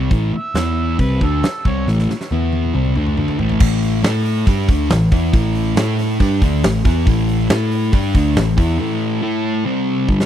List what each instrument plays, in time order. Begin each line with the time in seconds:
Already playing: distorted electric guitar C3 G3 C4
0.11 picked electric bass A1, distorted electric guitar A2 E3 A3, kick, open hi-hat
0.34 harmonica E5, muted distorted electric guitar stroke, muted picked electric bass stroke
0.54 picked electric bass E2, distorted electric guitar E3 B3 E4, snare, open hi-hat
0.99 picked electric bass C2, distorted electric guitar C3 G3 C4, harmonica B4, kick, open hi-hat
1.21 picked electric bass D2, distorted electric guitar D3 A3 D4, harmonica A4, kick
1.43 muted distorted electric guitar stroke, muted picked electric bass stroke, snare, open hi-hat
1.65 picked electric bass C2, distorted electric guitar C3 G3 C4, harmonica C#5, kick
1.87 picked electric bass A1, distorted electric guitar A2 E3 A3, snare
1.99 snare
2.10 muted picked electric bass stroke, muted distorted electric guitar stroke, snare
2.21 snare
2.31 picked electric bass E2, distorted electric guitar E3 B3 E4, high tom
2.42 high tom
2.52 high tom
2.64 mid tom
2.74 picked electric bass C2, distorted electric guitar C3 G3 C4, mid tom
2.85 mid tom
2.96 picked electric bass D2, distorted electric guitar D3 A3 D4, mid tom
3.06 mid tom
3.17 picked electric bass D2, distorted electric guitar D3 A3 D4, mid tom
3.28 floor tom
3.38 picked electric bass A1, distorted electric guitar A2 E3 A3, floor tom
3.49 floor tom
3.60 picked electric bass A1, distorted electric guitar A2 E3 A3, kick, crash
3.83 open hi-hat
4.03 picked electric bass A2, distorted electric guitar A3 E4 A4, snare, open hi-hat
4.26 open hi-hat
4.47 picked electric bass G2, distorted electric guitar G3 D4 G4, kick, open hi-hat
4.69 picked electric bass D2, distorted electric guitar D3 A3 D4, kick, open hi-hat
4.90 picked electric bass A1, distorted electric guitar A2 E3, snare, open hi-hat
5.11 picked electric bass E2, distorted electric guitar E3 B3 E4, kick, open hi-hat
5.33 picked electric bass A1, distorted electric guitar A2 E3 A3, kick, open hi-hat
5.55 open hi-hat
5.76 picked electric bass A2, distorted electric guitar A3 E4 A4, snare, open hi-hat
5.99 snare, open hi-hat
6.20 picked electric bass G2, distorted electric guitar G3 D4 G4, kick, open hi-hat
6.42 picked electric bass D2, distorted electric guitar D3 A3 D4, kick, open hi-hat
6.64 picked electric bass A1, distorted electric guitar A2 E3, snare, open hi-hat
6.84 picked electric bass E2, distorted electric guitar E3 B3 E4, kick, open hi-hat
7.07 picked electric bass A1, distorted electric guitar A2 E3 A3, kick, open hi-hat
7.29 open hi-hat
7.50 picked electric bass A2, distorted electric guitar A3 E4 A4, snare, open hi-hat
7.71 open hi-hat
7.93 picked electric bass G2, distorted electric guitar G3 D4 G4, kick, open hi-hat
8.14 picked electric bass D2, distorted electric guitar D3 A3 D4, kick, open hi-hat
8.36 picked electric bass A1, distorted electric guitar A2 E3, snare, open hi-hat
8.57 picked electric bass E2, distorted electric guitar E3 B3 E4, kick, open hi-hat
8.78 distorted electric guitar A2 E3 A3
9.22 distorted electric guitar A3 E4 A4
9.65 distorted electric guitar C3 G3 C4
10.08 distorted electric guitar G2 D3 G3, kick
10.20 snare